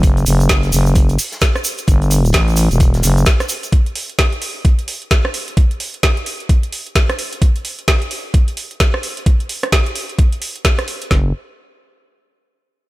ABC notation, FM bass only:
X:1
M:4/4
L:1/16
Q:"Swing 16ths" 1/4=130
K:Edor
V:1 name="FM bass" clef=bass
z2 F,,,4 F,,,4 z6 | G,,,4 z3 E,,,3 F,,,2 z4 | z16 | z16 |
z16 | z16 | F,,,2 z12 z2 |]